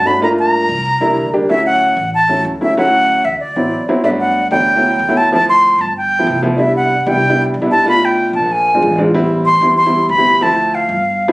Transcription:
Already playing: G2
0.06 A3 C#4 D4 F#4 B5
0.22 A3 A#3 D4 F4 A#5
0.39 A#5
0.69 C2
1.00 C2 G3 A#3 D4 E4
1.16 D2
1.33 G3 A#3 D4 G4
1.49 F#3 A3 C#4 E4 E5
1.66 F#5
1.97 A1
2.14 A5
2.29 F#3 A3 C#4 E4
2.44 D2
2.61 F#3 A3 C#4 E4 E5
2.77 F#3 A3 C#4 E4 F#5
3.24 D2 E5
3.40 D5
3.56 A1 F#3 B3 C4 E4
3.89 F#3 B3 C4 E4
4.04 G1 F#3 A3 B3 D4 E5
4.20 F#5
4.51 D2 F#3 A3 B3 D4 G5
4.76 F#3 A3 B3 E4
4.99 D2
5.08 F#3 A3 B3 E4
5.17 A5
5.32 F3 A3 C4 E4 A5
5.49 C6
5.78 G1 A5
5.97 G5
6.19 F3 A3 B3 E4
6.27 C2
6.43 F3 A3 B3 E4
6.56 G3 B3 D4 E4 D5
6.60 E5
6.76 F#5
7.01 F#5
7.06 C2 G3 B3 D4 E4 G5
7.30 G3 B3 D4 E4
7.54 B1
7.62 G3 B3 D4 E4
7.71 A5
7.86 A3 B3 D4 F4 B5
8.05 G5
8.33 A#1 A5
8.52 G#5
8.74 G#3 C4 D4 F4
8.82 A1
8.98 G#3 C4 D4 F4
9.14 G3 B3 C4 E4
9.46 C6
9.61 E2 G3 B3 C4 E4
9.77 C6
9.86 G3 B3 C4 E4
10.09 D2 B5
10.18 G3 B3 C4 E4
10.41 F3 A3 C4 E4 A5
10.75 F5
10.89 G1
11.28 F3 A3 B3 E4

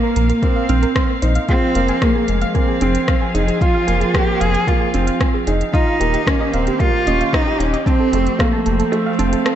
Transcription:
Already playing: A#2 A#3 A#4 F5
0.03 A#4
0.16 A#1 A#4, closed hi-hat
0.30 A#4, closed hi-hat
0.42 A#3 C4, kick, closed hi-hat
0.56 F5
0.69 A#1 C4 F6, closed hi-hat
0.83 A#4, closed hi-hat
0.96 C6, kick, cross-stick, closed hi-hat
1.22 A#1 D#4 C5, closed hi-hat
1.35 F5, closed hi-hat
1.48 F3 C4 F4 G#4, kick, closed hi-hat
1.66 C4
1.75 F1 A#3 F5, closed hi-hat
1.88 G#5, closed hi-hat
2.02 A#3 G#4, kick, cross-stick, closed hi-hat
2.15 G#4
2.28 F1 G#3, closed hi-hat
2.39 G#4 F5, closed hi-hat
2.55 A#3 C4 G#5, kick, closed hi-hat
2.68 G#4
2.81 F1 C4 G#4, closed hi-hat
2.95 closed hi-hat
3.08 F5, kick, cross-stick, closed hi-hat
3.21 G#5
3.34 F1 D#4 G#4, closed hi-hat
3.48 G#4, closed hi-hat
3.61 F4, kick, closed hi-hat
3.74 F5
3.87 F1 A#3 G#5, closed hi-hat
4.00 G#4, closed hi-hat
4.14 A#3 G4 G#4, kick, cross-stick, closed hi-hat
4.40 F1 G#4 F5, closed hi-hat
4.54 G#5, closed hi-hat
4.67 A#3 F4 G#4, kick, closed hi-hat
4.81 G#4
4.94 F1 C4, closed hi-hat
5.07 F5, closed hi-hat
5.20 G#5, kick, cross-stick, closed hi-hat
5.34 G#4
5.47 F1 D#4 G#4, closed hi-hat
5.61 closed hi-hat
5.73 D#3 D#4 F4 D#5, kick, closed hi-hat
5.87 F5
6.00 D#1 A#3 G4, closed hi-hat
6.14 A#3 G4, closed hi-hat
6.27 A#3 C#4 G4, kick, cross-stick, closed hi-hat
6.40 D#5
6.54 D#1 C4 F5, closed hi-hat
6.67 G4, closed hi-hat
6.79 A#3 F4 G4, kick, closed hi-hat
7.07 D#1 C#4 D#5, closed hi-hat
7.21 F5, closed hi-hat
7.33 D#4 G4, kick, cross-stick, closed hi-hat
7.47 G4
7.59 D#1 C#4 D#4, closed hi-hat
7.73 D#5, closed hi-hat
7.86 F3 C4 A5, kick, closed hi-hat
8.00 A4
8.13 F1 A3 C4 A4, closed hi-hat
8.27 closed hi-hat
8.39 A3 A#3 F5, kick, cross-stick, closed hi-hat
8.53 A5
8.66 F1 A4, closed hi-hat
8.80 A4 F5, closed hi-hat
8.92 A3, closed hi-hat
9.06 F5
9.19 F1 C4 A5, closed hi-hat
9.33 A4, closed hi-hat
9.46 A4, cross-stick, closed hi-hat

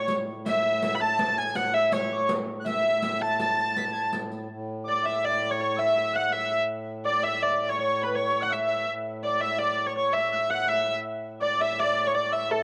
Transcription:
Already playing: D5 E5 F#5 A5
0.08 A2, riq
0.46 E5 E6, riq
0.64 F#5
0.83 E5 E6, riq
0.95 B5
1.00 A5 A6
1.19 A5 A6, riq
1.38 G#5 G#6
1.55 F#5 F#6, riq
1.73 E5 E6
1.92 C#5 C#6, riq
2.12 D6
2.29 riq
2.59 F#6
2.66 E5 E6, riq
2.84 F#5
3.02 E5 E6, riq
3.21 A5 A6
3.39 A5 A6, riq
3.58 riq
3.76 B6, riq
3.85 A6
3.93 G#6, riq
4.03 A6
4.13 riq
4.32 riq
4.49 A2
4.84 D5 D6
4.89 D5
5.03 E5
5.21 D5 D6
5.50 C#5 C#6
5.58 C#5 C#6
5.77 E5 E6
5.89 F#5
5.95 E5 E6
6.13 F#5 F#6
6.31 E5 E6
7.05 D5 D6
7.23 E5 E6
7.40 D5 D6
7.69 C#5 C#6
7.77 C#5 C#6
8.01 B4 B5
8.14 C#5 C#6
8.40 F#5 F#6
8.49 E5 E6
8.68 E5
8.87 A2
9.23 D5 D6
9.41 E5 E6
9.59 D5 D6
9.86 C#5 C#6
9.95 C#5 C#6
10.13 E5 E6
10.32 E5 E6 F#6
10.50 F#5 F#6
10.68 E5 E6
11.40 D5 D6
11.59 E5
11.77 D5 D6
12.05 C#5 C#6
12.13 D5 D6
12.31 E5 E6
12.50 A4 A5

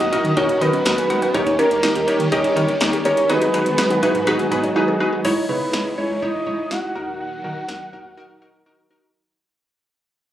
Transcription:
Already playing: A#2 D#3 F#3 C#4 F#4 D#5
0.00 D#2 F#4, closed hi-hat
0.12 D#4 E4 F#4 A#4 D#5, kick, closed hi-hat
0.25 D#3, closed hi-hat
0.37 D#2 D#4 F#4 A#4 C#5 D#5, kick, closed hi-hat
0.49 D#4, closed hi-hat
0.61 D#3 B3 D#4 F#4 A#4 B4 D#5, kick, closed hi-hat
0.73 C#4, closed hi-hat
0.86 D#2 D#4 F#4 A#4 F#5, snare, closed hi-hat
0.98 G#4, closed hi-hat
1.10 C#2 D#4 F#4 A#4 F#5, closed hi-hat
1.22 F#4, closed hi-hat
1.34 D#2 G3 A#3 C#4 D#4 G4 A#4 C#5, kick, closed hi-hat
1.47 D#2 D#4, closed hi-hat
1.59 C#4 D#4 G4 A#4 C#5, closed hi-hat
1.71 D#2, closed hi-hat
1.83 D#4 G4 A#4 D#5, snare, closed hi-hat
1.95 D#2 G4, closed hi-hat
2.08 D#4 G4 A#4 C#5, closed hi-hat
2.20 D#3, closed hi-hat
2.32 D#2 D#4 G4 A#4 C#5 D#5, kick, closed hi-hat
2.44 D#4, closed hi-hat
2.56 D#3 B3 D#4 G4 A#4 C#5, kick, closed hi-hat
2.68 C#4, closed hi-hat
2.81 D#2 D#4 G4 A#4 C#5, snare, closed hi-hat
2.93 G4, closed hi-hat
3.05 G1 D#4 G4 A#4 C#5, closed hi-hat
3.17 D#4, closed hi-hat
3.29 G#1 F#3 G#3 B3 D#4 F#4 G#4 B4, closed hi-hat
3.42 G#1 D#4, closed hi-hat
3.54 C#4 D#4 F#4 G#4 B4, closed hi-hat
3.66 G#1, closed hi-hat
3.78 D#4 F#4 G#4 B4, snare, closed hi-hat
3.90 G#1 F#4, closed hi-hat
4.03 D#4 E4 F#4 G#4 B4, kick, closed hi-hat
4.15 G#2, closed hi-hat
4.27 G#1 D#4 F#4 G#4 B4, kick, closed hi-hat
4.39 D#4, closed hi-hat
4.51 G#2 B3 D#4 F#4 G#4 B4, kick, closed hi-hat
4.64 C#4, closed hi-hat
4.76 D#4 F#4 G#4 B4
4.88 G#4
5.00 D#4 F#4 G#4 B4
5.13 F#4
5.25 C#2 C#3 E3 G#3 D#4 E4 C#5, kick, crash
5.49 C#3 D#4 E4 B4 C#5
5.73 C#2 D#4 E4 C#5, snare
5.98 C#2 D#4 E4 C#5
6.10 C#2
6.22 C#2 D#4 E4 C#5 D#5, kick
6.46 C#2 D#4 E4 C#5, kick
6.71 C#2 D#4 E4 F#4 F#5, snare
6.95 D#2 A#2 D#3 F#3 D#4 F#4 A#4
7.20 F#5
7.44 D#3 D#4 F#4 A#4
7.68 D#2 D#4 F#4 A#4, snare
7.93 D#2 D#4 F#4 A#4, kick
8.05 D#2
8.17 D#4 F#4 A#4
8.42 D#4 F#4 A#4
8.66 D#4 F#4 A#4
8.91 D#4 F#4 A#4

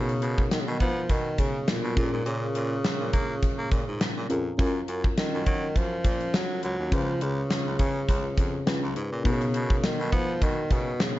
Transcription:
Already playing: B2 C#3 B3 D#4 F#4 A#4
0.09 closed hi-hat
0.22 B2, closed hi-hat
0.38 kick
0.51 D#3, snare, closed hi-hat
0.60 C#3
0.67 B2 D#3
0.80 F3 B3, kick, closed hi-hat
1.09 B2 D#3, kick, closed hi-hat
1.38 C#3, kick, closed hi-hat
1.68 A#2, snare, closed hi-hat
1.84 B2
1.96 A#2 C#4 F4 G#4 A4, kick, closed hi-hat
2.05 A#4
2.13 G#2
2.26 A#2 C#3, closed hi-hat
2.55 A#2, closed hi-hat
2.84 snare, closed hi-hat
3.00 A#2
3.13 A#3, kick, closed hi-hat
3.43 kick, closed hi-hat
3.59 A#3
3.71 A#2, kick, closed hi-hat
3.88 G#2
4.01 snare, closed hi-hat
4.17 A#2
4.29 F2 C#4 F4 G#4 A#4, closed hi-hat
4.58 F#2 C#4 F4 A#4, kick, closed hi-hat
4.88 F#2, closed hi-hat
5.04 kick
5.18 D#3, snare, closed hi-hat
5.34 F#2
5.46 F#3, kick, closed hi-hat
5.76 F#2 F3, kick, closed hi-hat
6.04 A#2, kick, closed hi-hat
6.21 closed hi-hat
6.34 F#3, snare, closed hi-hat
6.63 C#2 F#3, closed hi-hat
6.79 D#2
6.91 C#2 C#3 F3 C#4 F4 G#4 B4, kick, closed hi-hat
7.21 C#2 C#3, closed hi-hat
7.50 snare, closed hi-hat
7.66 C#2
7.79 C#3, kick, closed hi-hat
8.09 C#2, kick, closed hi-hat
8.37 F2, kick, closed hi-hat
8.66 C#4 F4 G#4 B4, snare, closed hi-hat
8.83 C#2
8.96 G#2, closed hi-hat
9.12 A#2
9.24 B2 C#3 B3 D#4 F#4 A#4, kick, closed hi-hat
9.41 closed hi-hat
9.54 B2, closed hi-hat
9.70 kick
9.84 D#3, snare, closed hi-hat
10.00 B2
10.12 F3 B3, kick, closed hi-hat
10.42 B2 D#3, kick, closed hi-hat
10.70 B2 C#3, kick, closed hi-hat
11.00 C#3, snare, closed hi-hat
11.16 B2

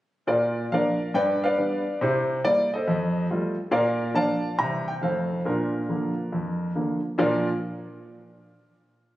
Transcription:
0.27 A#2 F4 A#4 D5
0.72 F3 A#3 D4 A#4 D5 F5
1.14 G2 B4 D5 G5
1.44 B4 D5 F5
1.58 G3 B3 D4
2.01 C3 E4 G4 C5
2.44 G3 A#3 E4 D5
2.74 A4 C5 D#5
2.88 F2
3.31 G3 A3 F4
3.71 A#2 A#4 D5 F5
4.14 F3 A#3 D4 D5 F5 A5
4.58 C3 E3 G3 C4 E5 G5 A#5
4.88 G5
5.02 F2 D#3 A3 C4 A4 C5 F5
5.45 A#2 D4 F4 A#4
5.89 D3 F3 A#3
6.33 F2
6.75 D3 F3 A#3
7.18 A#2 F3 D4 F4 A#4 D5

